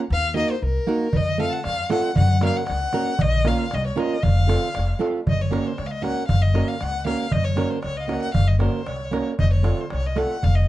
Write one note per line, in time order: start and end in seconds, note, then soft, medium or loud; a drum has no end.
0.10 0.41 D#2 loud
0.10 0.35 F5 loud
0.34 0.55 A#3 medium
0.34 0.55 D#4 medium
0.34 0.55 F#4 medium
0.34 0.56 A#4 medium
0.34 0.52 D#5 medium
0.51 0.62 C5 medium
0.62 0.77 C2 medium
0.62 1.18 A#4 medium
0.87 1.07 A#3 medium
0.87 1.07 D#4 medium
0.87 1.07 F#4 medium
0.87 1.08 A#4 medium
1.13 1.45 F2 medium
1.13 1.40 D#5 loud
1.13 darbuka dum medium
1.38 1.58 A3 medium
1.38 1.58 C4 medium
1.38 1.59 F4 medium
1.38 1.59 A4 medium
1.38 1.51 F5 medium
1.49 1.65 F#5 medium
1.49 1.54 A5 medium
1.64 1.80 F2 medium
1.64 1.89 F5 loud
1.64 darbuka tek medium
1.90 2.10 A3 medium
1.90 2.10 C4 medium
1.90 2.10 F4 medium
1.90 2.11 A4 medium
1.90 2.15 F#5 medium
1.90 darbuka tek medium
2.03 darbuka tek soft
2.16 2.48 F#2 loud
2.16 2.41 F#5 loud
2.16 darbuka dum medium
2.41 2.61 A#3 medium
2.41 2.61 C#4 medium
2.41 2.62 F#4 medium
2.41 2.62 A#4 medium
2.41 darbuka tek medium
2.45 2.58 F5 medium
2.57 2.68 F#5 medium
2.67 2.84 C#2 medium
2.67 3.23 F#5 loud
2.67 darbuka tek medium
2.93 3.13 A#3 medium
2.93 3.13 C#4 medium
2.93 3.13 F#4 medium
2.93 3.14 A#4 medium
2.93 darbuka tek medium
3.06 darbuka tek soft
3.19 3.51 A#1 medium
3.19 3.49 D#5 loud
3.19 darbuka dum loud
3.44 3.65 A#3 medium
3.44 3.65 C#4 medium
3.44 3.65 F4 medium
3.44 3.66 A#4 medium
3.44 3.76 F5 medium
3.44 darbuka tek medium
3.71 3.88 C2 loud
3.71 3.86 D#5 medium
3.71 darbuka tek medium
3.87 4.01 C#5 medium
3.96 4.16 A#3 medium
3.96 4.16 C#4 medium
3.96 4.17 F4 medium
3.96 4.17 A#4 medium
3.96 darbuka tek medium
4.00 4.25 D#5 medium
4.11 darbuka tek soft
4.23 4.55 F1 loud
4.23 5.00 F5 loud
4.23 darbuka dum medium
4.37 darbuka tek soft
4.47 4.68 A3 medium
4.47 4.68 C4 medium
4.47 4.68 F4 medium
4.47 4.69 A4 medium
4.47 darbuka tek medium
4.75 4.91 F1 medium
4.75 darbuka tek medium
4.89 darbuka tek soft
4.99 5.19 A3 medium
4.99 5.20 C4 medium
4.99 5.20 F4 medium
4.99 5.20 A4 medium
4.99 darbuka tek medium
5.27 5.57 F#1 medium
5.27 5.43 D#5 loud
5.27 darbuka dum loud
5.40 5.68 C#5 medium
5.40 darbuka tek soft
5.51 5.71 A#3 medium
5.51 5.71 C#4 medium
5.51 5.71 F#4 medium
5.51 5.72 A#4 medium
5.51 darbuka tek medium
5.65 5.79 C5 medium
5.65 darbuka tek soft
5.78 6.09 C#2 medium
5.78 5.88 C#5 medium
5.78 darbuka tek medium
5.87 5.93 F5 medium
5.91 6.04 D#5 medium
5.91 darbuka tek soft
6.02 6.22 A#3 medium
6.02 6.23 C#4 medium
6.02 6.23 F#4 medium
6.02 6.23 A#4 medium
6.02 6.28 F#5 medium
6.02 darbuka tek medium
6.17 darbuka tek soft
6.28 6.60 F#1 loud
6.28 6.44 F5 medium
6.28 darbuka dum medium
6.42 6.69 D#5 medium
6.42 darbuka tek soft
6.54 6.74 A#3 medium
6.54 6.74 C#4 medium
6.54 6.75 F#4 medium
6.54 6.75 A#4 medium
6.54 darbuka tek medium
6.68 6.84 F5 medium
6.68 darbuka tek soft
6.81 7.12 C#2 medium
6.81 7.06 F#5 loud
6.81 darbuka tek medium
6.94 darbuka tek soft
7.05 7.26 A#3 medium
7.05 7.26 C#4 medium
7.05 7.26 F#4 medium
7.05 7.27 A#4 medium
7.05 7.34 F5 medium
7.05 darbuka tek medium
7.19 darbuka tek soft
7.32 7.63 F#1 medium
7.32 7.46 D#5 loud
7.32 darbuka dum loud
7.44 7.72 C#5 medium
7.44 darbuka tek soft
7.56 7.77 A#3 medium
7.56 7.77 C#4 medium
7.56 7.78 F#4 medium
7.56 7.78 A#4 medium
7.56 darbuka tek medium
7.70 7.82 C5 medium
7.70 darbuka tek soft
7.83 8.15 C#2 medium
7.83 7.99 C#5 medium
7.83 darbuka tek medium
7.96 8.01 D#5 medium
7.96 8.04 F5 medium
7.96 darbuka tek soft
8.03 8.08 D#5 medium
8.08 8.29 A#3 medium
8.08 8.29 C#4 medium
8.08 8.29 F#4 medium
8.08 8.29 A#4 medium
8.08 8.21 F#5 medium
8.08 darbuka tek medium
8.22 8.33 F#5 medium
8.34 8.66 F#1 loud
8.34 8.49 F5 loud
8.34 darbuka dum medium
8.48 8.61 D#5 medium
8.59 8.80 A#3 medium
8.59 8.81 C#4 medium
8.59 8.81 F#4 medium
8.59 8.81 A#4 medium
8.59 8.89 C5 medium
8.59 darbuka tek medium
8.87 9.18 C2 medium
8.87 9.26 C#5 medium
8.87 darbuka tek medium
9.00 darbuka tek soft
9.11 9.32 A#3 medium
9.11 9.32 C#4 medium
9.11 9.32 F#4 medium
9.11 9.33 A#4 medium
9.11 darbuka tek medium
9.39 9.70 F1 loud
9.39 9.51 D#5 loud
9.39 darbuka dum loud
9.52 9.82 C#5 medium
9.52 darbuka tek soft
9.63 9.84 A3 medium
9.63 9.84 C4 medium
9.63 9.84 F4 medium
9.63 9.84 A4 medium
9.63 darbuka tek medium
9.78 9.92 C5 medium
9.78 darbuka tek soft
9.90 10.23 C2 medium
9.90 10.08 C#5 medium
9.90 darbuka tek medium
10.04 10.20 D#5 medium
10.04 darbuka tek soft
10.16 10.36 A3 medium
10.16 10.36 C4 medium
10.16 10.36 F4 medium
10.16 10.37 A4 medium
10.16 10.45 F#5 medium
10.16 darbuka tek medium
10.30 darbuka tek soft
10.43 10.68 F1 loud
10.43 10.57 F5 loud
10.43 darbuka dum medium
10.55 10.68 D#5 medium
10.55 darbuka tek soft